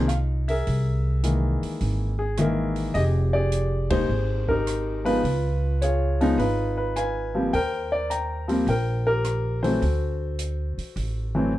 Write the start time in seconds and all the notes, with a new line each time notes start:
Already playing: C2 D#4 F4
0.08 F5, cross-stick, closed hi-hat
0.48 G#4 A#4 E5, open hi-hat
0.67 C2, open hi-hat
1.23 D#3 E3 G#3 A#3, closed hi-hat
1.63 muted upright bass stroke, open hi-hat
1.81 G#1, open hi-hat
2.19 G#4
2.37 D#3 E3 G#3 A#3 G#4 A#4 E5, cross-stick, closed hi-hat
2.76 open hi-hat
2.94 F1 G4 G#4 D#5, open hi-hat
3.33 G4 G#4 D5
3.52 closed hi-hat
3.90 G3 G#3 A#3 D#4 G#4 C5, kick, ride
4.09 G#1
4.48 D#4 G4 A#4, kick
4.67 cross-stick, closed hi-hat
5.05 F3 G#3 B3 D#4 F4 B4, open hi-hat
5.24 C#2, open hi-hat
5.82 F4 G#4 C#5, closed hi-hat
6.21 F3 G#3 B3 D#4, open hi-hat
6.38 G#1 D#4 F4 B4, open hi-hat
6.77 B4
6.96 B4 F5 G#5, cross-stick, closed hi-hat
7.35 F3 G3 A#3 C4
7.53 D#2 A#4 C5 G5, open hi-hat
7.92 D5
8.10 G5 A#5, closed hi-hat
8.48 F3 G3 A#3 C4, open hi-hat
8.67 A#1 A#4 C5 G5, open hi-hat
9.07 G4 A#4
9.24 cross-stick, closed hi-hat
9.63 E3 F#3 A3 C4 F#4 A4 C5, open hi-hat
9.82 D2, open hi-hat
10.39 closed hi-hat
10.77 muted upright bass stroke, open hi-hat
10.96 A1, open hi-hat
11.35 E3 F#3 A3 C4